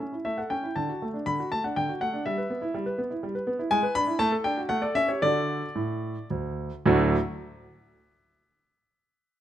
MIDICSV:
0, 0, Header, 1, 2, 480
1, 0, Start_track
1, 0, Key_signature, 2, "major"
1, 0, Tempo, 507185
1, 729, Time_signature, 3, 2, 24, 8
1, 1202, Tempo, 490597
1, 4562, Tempo, 531444
1, 8805, End_track
2, 0, Start_track
2, 0, Title_t, "Grand piano"
2, 0, Program_c, 0, 0
2, 0, Note_on_c, 0, 76, 80
2, 2, Note_on_c, 0, 61, 41
2, 116, Note_on_c, 0, 64, 39
2, 129, Note_off_c, 0, 61, 0
2, 221, Note_off_c, 0, 76, 0
2, 235, Note_on_c, 0, 76, 74
2, 238, Note_on_c, 0, 57, 47
2, 247, Note_off_c, 0, 64, 0
2, 356, Note_on_c, 0, 78, 53
2, 358, Note_off_c, 0, 57, 0
2, 361, Note_off_c, 0, 76, 0
2, 364, Note_on_c, 0, 69, 47
2, 474, Note_on_c, 0, 79, 80
2, 479, Note_on_c, 0, 61, 41
2, 482, Note_off_c, 0, 78, 0
2, 493, Note_off_c, 0, 69, 0
2, 599, Note_on_c, 0, 64, 43
2, 610, Note_off_c, 0, 61, 0
2, 697, Note_off_c, 0, 79, 0
2, 715, Note_on_c, 0, 81, 73
2, 721, Note_on_c, 0, 50, 64
2, 724, Note_off_c, 0, 64, 0
2, 840, Note_off_c, 0, 50, 0
2, 844, Note_on_c, 0, 66, 50
2, 968, Note_on_c, 0, 57, 45
2, 970, Note_off_c, 0, 66, 0
2, 1003, Note_off_c, 0, 81, 0
2, 1076, Note_on_c, 0, 62, 51
2, 1091, Note_off_c, 0, 57, 0
2, 1193, Note_on_c, 0, 83, 95
2, 1196, Note_on_c, 0, 50, 57
2, 1204, Note_off_c, 0, 62, 0
2, 1316, Note_off_c, 0, 50, 0
2, 1326, Note_on_c, 0, 66, 58
2, 1415, Note_off_c, 0, 83, 0
2, 1443, Note_on_c, 0, 81, 91
2, 1448, Note_on_c, 0, 57, 46
2, 1452, Note_off_c, 0, 66, 0
2, 1564, Note_off_c, 0, 81, 0
2, 1565, Note_on_c, 0, 78, 61
2, 1568, Note_on_c, 0, 62, 46
2, 1573, Note_off_c, 0, 57, 0
2, 1685, Note_off_c, 0, 78, 0
2, 1685, Note_on_c, 0, 79, 83
2, 1689, Note_on_c, 0, 50, 53
2, 1692, Note_off_c, 0, 62, 0
2, 1803, Note_off_c, 0, 50, 0
2, 1810, Note_on_c, 0, 66, 49
2, 1829, Note_off_c, 0, 79, 0
2, 1926, Note_on_c, 0, 78, 86
2, 1930, Note_on_c, 0, 57, 52
2, 1933, Note_off_c, 0, 66, 0
2, 2048, Note_on_c, 0, 62, 49
2, 2053, Note_off_c, 0, 57, 0
2, 2140, Note_off_c, 0, 78, 0
2, 2165, Note_off_c, 0, 62, 0
2, 2166, Note_on_c, 0, 76, 80
2, 2172, Note_on_c, 0, 55, 69
2, 2283, Note_off_c, 0, 55, 0
2, 2285, Note_on_c, 0, 71, 57
2, 2405, Note_on_c, 0, 59, 56
2, 2408, Note_off_c, 0, 71, 0
2, 2519, Note_on_c, 0, 64, 61
2, 2528, Note_off_c, 0, 59, 0
2, 2644, Note_off_c, 0, 64, 0
2, 2644, Note_on_c, 0, 55, 67
2, 2757, Note_off_c, 0, 55, 0
2, 2758, Note_on_c, 0, 71, 59
2, 2877, Note_on_c, 0, 59, 60
2, 2879, Note_off_c, 0, 76, 0
2, 2884, Note_off_c, 0, 71, 0
2, 2997, Note_on_c, 0, 64, 51
2, 3003, Note_off_c, 0, 59, 0
2, 3121, Note_on_c, 0, 55, 64
2, 3123, Note_off_c, 0, 64, 0
2, 3234, Note_off_c, 0, 55, 0
2, 3237, Note_on_c, 0, 71, 56
2, 3354, Note_on_c, 0, 59, 66
2, 3361, Note_off_c, 0, 71, 0
2, 3474, Note_on_c, 0, 64, 55
2, 3480, Note_off_c, 0, 59, 0
2, 3587, Note_on_c, 0, 80, 115
2, 3591, Note_on_c, 0, 56, 81
2, 3594, Note_off_c, 0, 64, 0
2, 3705, Note_on_c, 0, 71, 70
2, 3708, Note_off_c, 0, 56, 0
2, 3805, Note_off_c, 0, 80, 0
2, 3825, Note_on_c, 0, 83, 121
2, 3831, Note_on_c, 0, 62, 59
2, 3834, Note_off_c, 0, 71, 0
2, 3943, Note_on_c, 0, 64, 64
2, 3957, Note_off_c, 0, 62, 0
2, 4058, Note_on_c, 0, 81, 112
2, 4061, Note_on_c, 0, 57, 91
2, 4067, Note_off_c, 0, 64, 0
2, 4068, Note_off_c, 0, 83, 0
2, 4184, Note_off_c, 0, 57, 0
2, 4187, Note_on_c, 0, 69, 70
2, 4208, Note_off_c, 0, 81, 0
2, 4306, Note_on_c, 0, 79, 95
2, 4311, Note_on_c, 0, 62, 55
2, 4318, Note_off_c, 0, 69, 0
2, 4434, Note_on_c, 0, 66, 55
2, 4442, Note_off_c, 0, 62, 0
2, 4457, Note_off_c, 0, 79, 0
2, 4547, Note_on_c, 0, 78, 101
2, 4553, Note_on_c, 0, 57, 74
2, 4560, Note_off_c, 0, 66, 0
2, 4665, Note_on_c, 0, 74, 74
2, 4669, Note_off_c, 0, 57, 0
2, 4669, Note_on_c, 0, 69, 63
2, 4670, Note_off_c, 0, 78, 0
2, 4785, Note_on_c, 0, 61, 54
2, 4786, Note_on_c, 0, 76, 108
2, 4788, Note_off_c, 0, 74, 0
2, 4796, Note_off_c, 0, 69, 0
2, 4904, Note_on_c, 0, 73, 65
2, 4907, Note_on_c, 0, 67, 50
2, 4908, Note_off_c, 0, 76, 0
2, 4914, Note_off_c, 0, 61, 0
2, 5029, Note_off_c, 0, 73, 0
2, 5030, Note_off_c, 0, 67, 0
2, 5030, Note_on_c, 0, 74, 101
2, 5032, Note_on_c, 0, 50, 74
2, 5032, Note_on_c, 0, 66, 56
2, 5032, Note_on_c, 0, 69, 58
2, 5372, Note_off_c, 0, 50, 0
2, 5420, Note_off_c, 0, 66, 0
2, 5421, Note_off_c, 0, 69, 0
2, 5511, Note_on_c, 0, 45, 65
2, 5857, Note_off_c, 0, 45, 0
2, 5971, Note_off_c, 0, 74, 0
2, 6007, Note_on_c, 0, 38, 57
2, 6354, Note_off_c, 0, 38, 0
2, 6505, Note_on_c, 0, 38, 105
2, 6507, Note_on_c, 0, 45, 85
2, 6510, Note_on_c, 0, 54, 90
2, 6513, Note_on_c, 0, 57, 91
2, 6516, Note_on_c, 0, 62, 85
2, 6519, Note_on_c, 0, 66, 88
2, 6767, Note_off_c, 0, 38, 0
2, 6768, Note_off_c, 0, 45, 0
2, 6770, Note_off_c, 0, 54, 0
2, 6772, Note_off_c, 0, 57, 0
2, 6773, Note_off_c, 0, 62, 0
2, 6775, Note_off_c, 0, 66, 0
2, 8805, End_track
0, 0, End_of_file